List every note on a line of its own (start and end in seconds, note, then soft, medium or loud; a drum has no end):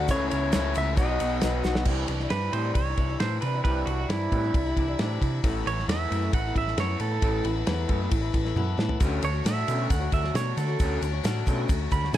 0.00 0.11 D2 medium
0.00 0.10 A3 soft
0.00 0.10 F#5 loud
0.08 0.29 C#2 loud
0.08 0.31 C#3 medium
0.08 0.32 E3 medium
0.08 0.32 A3 medium
0.08 0.97 C#4 medium
0.08 0.32 C#4 medium
0.08 0.97 E4 medium
0.08 0.32 E4 medium
0.08 0.97 A4 medium
0.08 0.29 C#5 loud
0.08 kick loud
0.08 ride medium
0.08 shaker loud
0.30 0.52 C#2 medium
0.30 0.54 E3 medium
0.30 0.54 A3 medium
0.30 0.55 C#4 medium
0.30 0.54 E4 medium
0.30 0.76 C#5 loud
0.30 ride medium
0.30 shaker medium
0.34 0.55 E4 medium
0.52 0.74 C#2 medium
0.52 0.65 C#3 loud
0.52 0.65 E3 medium
0.52 0.66 A3 medium
0.52 0.66 C#4 loud
0.52 snare loud
0.52 ride loud
0.52 shaker loud
0.56 0.64 E4 medium
0.65 0.77 A3 soft
0.65 0.77 C#4 soft
0.65 0.76 E4 medium
0.74 0.96 C#2 medium
0.74 0.98 E3 medium
0.74 0.99 A3 medium
0.74 0.96 E4 medium
0.74 0.97 E5 loud
0.74 ride medium
0.74 shaker medium
0.78 0.98 C#4 medium
0.78 0.99 E4 medium
0.97 1.18 B1 medium
0.97 1.09 B2 medium
0.97 1.09 F#3 medium
0.97 1.09 B3 medium
0.97 1.86 D#4 medium
0.97 1.08 D#4 medium
0.97 1.86 F#4 medium
0.97 1.07 F#4 medium
0.97 1.86 B4 medium
0.97 1.60 D#5 medium
0.97 kick loud
0.97 ride loud
0.97 shaker medium
1.09 1.19 B3 soft
1.09 1.19 D#4 medium
1.09 1.20 F#4 medium
1.19 1.41 B1 medium
1.19 1.65 B2 medium
1.19 1.41 F#3 medium
1.19 1.41 B3 medium
1.19 1.41 D#4 medium
1.19 1.42 F#4 medium
1.19 ride medium
1.19 shaker medium
1.41 1.63 B1 medium
1.41 1.64 B2 medium
1.41 1.62 F#3 medium
1.41 1.62 B3 medium
1.41 1.63 D#4 medium
1.41 1.64 F#4 medium
1.41 snare loud
1.41 ride medium
1.41 shaker medium
1.63 1.85 B1 medium
1.63 1.75 F#3 medium
1.63 1.75 B3 medium
1.63 1.75 D#4 medium
1.63 1.74 F#4 medium
1.63 snare medium
1.63 shaker medium
1.75 1.87 B3 soft
1.75 1.87 D#4 medium
1.75 1.87 F#4 medium
1.75 snare medium
1.85 2.04 C2 medium
1.85 2.09 C3 medium
1.85 2.09 E3 medium
1.85 2.09 G3 medium
1.85 5.41 D4 medium
1.85 2.10 D4 medium
1.85 5.40 E4 medium
1.85 2.10 E4 medium
1.85 5.40 E5 medium
1.85 kick loud
1.85 crash loud
2.08 2.26 C2 medium
2.08 2.29 C3 medium
2.08 2.21 E3 medium
2.08 2.21 G3 medium
2.08 2.20 D4 medium
2.08 2.19 E4 medium
2.08 ride medium
2.20 2.30 G3 soft
2.20 2.30 D4 soft
2.20 2.31 E4 medium
2.20 snare soft
2.30 2.49 G2 medium
2.30 2.64 C3 medium
2.30 2.64 E3 medium
2.30 2.65 G3 medium
2.30 2.64 D4 medium
2.30 2.63 E4 medium
2.30 2.52 B4 medium
2.30 snare loud
2.30 ride medium
2.52 2.71 A2 medium
2.52 2.74 C3 medium
2.52 2.74 E3 medium
2.52 2.74 G3 loud
2.52 2.74 C5 medium
2.52 ride medium
2.65 2.88 G3 soft
2.65 2.87 D4 soft
2.65 2.87 E4 medium
2.75 2.93 C2 medium
2.75 2.96 C3 medium
2.75 2.96 E3 medium
2.75 3.19 C#5 medium
2.75 kick loud
2.75 ride loud
2.89 2.96 G3 soft
2.89 2.97 D4 soft
2.89 2.97 E4 medium
2.97 3.15 C2 medium
2.97 3.18 C3 medium
2.97 3.09 E3 medium
2.97 3.09 G3 medium
2.97 3.09 D4 medium
2.97 3.08 E4 medium
2.97 kick medium
2.97 ride medium
3.09 3.19 G3 soft
3.09 3.20 D4 medium
3.09 3.20 E4 medium
3.20 3.38 A2 medium
3.20 3.42 C3 medium
3.20 3.42 E3 medium
3.20 3.43 G3 medium
3.20 3.43 D4 medium
3.20 3.43 E4 medium
3.20 3.41 C5 medium
3.20 snare loud
3.20 ride medium
3.41 3.63 C3 medium
3.41 3.60 C3 medium
3.41 3.54 E3 medium
3.41 3.54 G3 medium
3.41 3.54 D4 medium
3.41 3.53 E4 medium
3.41 3.63 B4 medium
3.41 ride medium
3.54 3.65 G3 soft
3.54 3.65 D4 soft
3.54 3.65 E4 medium
3.64 3.82 C2 medium
3.64 3.88 C3 medium
3.64 3.87 E3 medium
3.64 3.87 G3 medium
3.64 3.88 D4 medium
3.64 3.88 E4 medium
3.64 3.86 B4 medium
3.64 kick loud
3.64 ride medium
3.86 4.04 C2 medium
3.86 4.08 C3 medium
3.86 3.99 E3 medium
3.86 3.99 G3 medium
3.86 3.99 D4 medium
3.86 3.98 E4 medium
3.86 4.08 F#4 medium
3.86 ride medium
4.00 4.09 G3 soft
4.00 4.10 D4 soft
4.00 4.10 E4 medium
4.09 4.27 G2 medium
4.09 4.43 C3 medium
4.09 4.44 E3 medium
4.09 4.44 G3 medium
4.09 4.44 D4 medium
4.09 5.39 E4 medium
4.09 4.43 E4 medium
4.09 snare loud
4.09 ride loud
4.32 4.50 A2 medium
4.32 4.53 C3 medium
4.32 4.53 E3 loud
4.32 4.54 G3 loud
4.32 kick medium
4.32 ride medium
4.44 4.67 G3 soft
4.44 4.66 D4 medium
4.44 4.65 E4 medium
4.54 4.72 C2 medium
4.54 4.74 C3 medium
4.54 4.75 E3 medium
4.54 kick loud
4.54 ride medium
4.66 4.76 G3 medium
4.66 4.77 D4 medium
4.66 4.77 E4 medium
4.76 4.94 C2 medium
4.76 4.97 C3 medium
4.76 4.88 E3 medium
4.76 4.88 G3 medium
4.76 4.87 D4 medium
4.76 4.86 E4 medium
4.76 kick medium
4.76 ride medium
4.88 4.99 G3 medium
4.88 4.99 D4 medium
4.88 4.99 E4 medium
4.99 5.17 A2 medium
4.99 5.22 C3 medium
4.99 5.20 E3 medium
4.99 5.21 G3 medium
4.99 5.21 D4 loud
4.99 5.22 E4 loud
4.99 snare loud
4.99 ride medium
5.21 5.41 C3 medium
5.21 5.39 C3 medium
5.21 5.44 E3 medium
5.21 5.44 G3 medium
5.21 5.44 D4 medium
5.21 5.44 E4 medium
5.21 kick medium
5.21 ride medium
5.43 5.61 A1 loud
5.43 5.67 A2 medium
5.43 5.67 E3 medium
5.43 5.67 A3 medium
5.43 5.67 B3 medium
5.43 8.98 E4 medium
5.43 5.67 E4 medium
5.43 8.98 A4 medium
5.43 8.98 B4 medium
5.43 kick loud
5.43 ride loud
5.65 5.83 A1 medium
5.65 5.86 A2 medium
5.65 5.78 E3 medium
5.65 5.79 A3 medium
5.65 5.79 B3 medium
5.65 5.79 E4 medium
5.65 5.88 C#5 loud
5.65 ride medium
5.79 5.89 A3 soft
5.79 5.90 B3 soft
5.79 5.90 E4 soft
5.79 snare soft
5.88 6.06 E2 medium
5.88 6.23 A2 medium
5.88 6.23 E3 medium
5.88 6.23 A3 medium
5.88 6.23 B3 medium
5.88 6.21 E4 medium
5.88 6.32 E5 loud
5.88 snare loud
5.88 ride loud
6.10 6.29 F#2 medium
6.10 6.32 A2 medium
6.10 6.32 E3 medium
6.10 6.32 A3 medium
6.10 ride medium
6.23 6.46 A3 soft
6.23 6.45 B3 medium
6.23 6.45 E4 medium
6.33 6.51 A1 medium
6.33 6.53 A2 medium
6.33 6.54 E3 medium
6.33 6.56 F#5 medium
6.33 kick loud
6.33 ride loud
6.47 6.56 A3 soft
6.47 6.57 B3 medium
6.47 6.57 E4 medium
6.55 6.73 A1 medium
6.55 6.75 A2 medium
6.55 6.68 E3 medium
6.55 6.68 A3 medium
6.55 6.67 B3 medium
6.55 6.78 E5 medium
6.55 kick medium
6.55 ride medium
6.59 6.66 E4 medium
6.67 6.78 A3 soft
6.67 6.77 B3 soft
6.67 6.78 E4 soft
6.67 snare soft
6.77 6.95 F#2 medium
6.77 7.00 A2 medium
6.77 6.97 E3 medium
6.77 6.98 A3 medium
6.77 6.99 B3 medium
6.77 7.00 E4 medium
6.77 7.01 C#5 medium
6.77 snare loud
6.77 ride medium
6.98 7.20 A2 medium
6.98 7.18 A2 medium
6.98 7.10 E3 medium
6.98 7.11 A3 medium
6.98 7.10 B3 medium
6.98 7.10 E4 medium
6.98 7.44 A4 medium
6.98 ride medium
7.11 7.21 A3 soft
7.11 7.21 B3 soft
7.11 7.22 E4 medium
7.22 7.40 A1 medium
7.22 7.45 A2 medium
7.22 7.42 E3 medium
7.22 7.43 A3 medium
7.22 7.43 B3 medium
7.22 7.44 E4 medium
7.22 kick loud
7.22 ride medium
7.43 7.62 A1 medium
7.43 7.65 A2 medium
7.43 7.55 E3 medium
7.43 7.56 A3 medium
7.43 7.55 B3 medium
7.43 7.55 E4 medium
7.43 ride medium
7.56 7.66 A3 soft
7.56 7.67 B3 medium
7.56 7.66 E4 medium
7.66 7.85 E2 loud
7.66 8.00 A2 loud
7.66 8.01 E3 medium
7.66 8.01 A3 loud
7.66 8.00 B3 loud
7.66 7.99 E4 loud
7.66 snare loud
7.66 ride medium
7.88 8.07 F#2 medium
7.88 8.10 A2 medium
7.88 8.10 E3 medium
7.88 8.11 A3 loud
7.88 kick medium
7.88 ride medium
8.00 8.22 A3 medium
8.00 8.21 B3 medium
8.00 8.20 E4 medium
8.11 8.29 A1 medium
8.11 8.32 A2 medium
8.11 8.32 E3 medium
8.11 kick loud
8.11 ride medium
8.21 8.32 A3 soft
8.21 8.32 B3 medium
8.21 8.33 E4 medium
8.33 8.52 A1 medium
8.33 8.54 A2 medium
8.33 8.45 E3 medium
8.33 8.45 A3 medium
8.33 8.44 B3 medium
8.33 8.43 E4 medium
8.33 kick medium
8.33 ride medium
8.45 8.56 A3 medium
8.45 8.56 B3 medium
8.45 8.56 E4 medium
8.45 snare soft
8.56 8.74 F#2 medium
8.56 8.79 A2 medium
8.56 8.76 E3 medium
8.56 8.77 A3 medium
8.56 8.77 B3 medium
8.56 8.77 E4 medium
8.56 high tom medium
8.78 8.96 A2 medium
8.78 8.99 A2 medium
8.78 8.99 E3 medium
8.78 8.99 A3 medium
8.78 9.00 B3 medium
8.78 9.00 E4 medium
8.78 snare medium
8.89 floor tom medium
9.00 9.19 D2 medium
9.00 9.20 D3 medium
9.00 12.17 D3 medium
9.00 9.20 A3 medium
9.00 9.21 C#4 medium
9.00 9.22 F#4 medium
9.00 12.17 F#4 medium
9.00 12.17 C#5 medium
9.00 kick loud
9.00 ride medium
9.00 shaker medium
9.21 9.41 D2 medium
9.21 9.33 D3 medium
9.21 9.33 A3 medium
9.21 9.33 C#4 medium
9.21 9.32 F#4 medium
9.21 9.46 C#5 medium
9.21 ride medium
9.21 shaker medium
9.33 9.43 A3 soft
9.33 9.44 C#4 soft
9.33 9.44 F#4 medium
9.44 9.63 A2 medium
9.44 9.79 D3 medium
9.44 9.78 A3 medium
9.44 9.77 C#4 medium
9.44 9.77 F#4 medium
9.44 9.90 E5 medium
9.44 snare loud
9.44 ride loud
9.44 shaker loud
9.68 9.86 B2 medium
9.68 9.89 D3 medium
9.68 9.89 A3 medium
9.68 9.90 C#4 medium
9.68 ride medium
9.68 shaker medium
9.78 10.01 A3 soft
9.78 10.00 C#4 medium
9.78 9.99 F#4 medium
9.90 10.08 D2 medium
9.90 10.11 D3 medium
9.90 10.11 A3 medium
9.90 10.12 F#5 medium
9.90 kick loud
9.90 ride medium
9.90 shaker loud
10.00 10.11 A3 soft
10.00 10.12 C#4 medium
10.00 10.12 F#4 medium
10.11 10.30 D2 medium
10.11 10.23 D3 medium
10.11 10.24 A3 medium
10.11 10.22 C#4 medium
10.11 10.22 F#4 medium
10.11 10.35 E5 medium
10.11 kick medium
10.11 ride medium
10.11 shaker medium
10.23 10.35 A3 soft
10.23 10.35 C#4 soft
10.23 10.35 F#4 medium
10.23 snare soft
10.34 10.52 B2 medium
10.34 10.56 D3 medium
10.34 10.57 A3 medium
10.34 10.58 C#4 medium
10.34 10.57 F#4 medium
10.34 10.57 C#5 medium
10.34 snare loud
10.34 ride medium
10.34 shaker medium
10.57 10.75 D3 medium
10.57 10.69 D3 medium
10.57 10.69 A3 medium
10.57 10.68 C#4 medium
10.57 10.67 F#4 medium
10.57 11.01 A4 medium
10.57 ride medium
10.57 shaker medium
10.68 10.80 A3 soft
10.68 10.80 C#4 soft
10.68 10.80 F#4 soft
10.79 10.97 D2 loud
10.79 11.01 D3 medium
10.79 11.02 A3 medium
10.79 11.02 C#4 medium
10.79 11.03 F#4 medium
10.79 kick loud
10.79 ride medium
10.79 shaker medium
11.01 11.19 D2 medium
11.01 11.14 D3 medium
11.01 11.13 A3 medium
11.01 11.12 C#4 medium
11.01 11.11 F#4 medium
11.01 ride medium
11.01 shaker medium
11.12 11.23 A3 soft
11.12 11.23 C#4 medium
11.12 11.23 F#4 medium
11.23 11.42 A2 medium
11.23 11.58 D3 medium
11.23 11.58 A3 medium
11.23 11.57 C#4 loud
11.23 11.56 F#4 loud
11.23 snare loud
11.23 ride loud
11.23 shaker medium
11.47 11.64 B2 medium
11.47 11.68 D3 loud
11.47 11.68 A3 medium
11.47 11.68 C#4 medium
11.47 kick medium
11.47 ride medium
11.47 shaker medium
11.57 11.81 A3 medium
11.57 11.81 C#4 medium
11.57 11.80 F#4 medium
11.69 11.87 D2 medium
11.69 11.89 D3 medium
11.69 11.89 A3 medium
11.69 kick loud
11.69 ride medium
11.69 shaker medium
11.81 11.91 A3 soft
11.81 11.92 C#4 medium
11.81 11.92 F#4 medium
11.91 12.09 D2 medium
11.91 12.03 D3 medium
11.91 12.03 A3 medium
11.91 12.04 C#4 medium
11.91 12.02 F#4 medium
11.91 12.14 B5 medium
11.91 kick medium
11.91 ride medium
11.91 shaker medium
12.03 12.13 A3 soft
12.03 12.13 C#4 medium
12.03 12.14 F#4 medium
12.03 snare soft
12.13 12.17 B2 loud
12.13 12.17 D3 medium
12.13 12.17 A3 medium
12.13 ride medium
12.13 shaker medium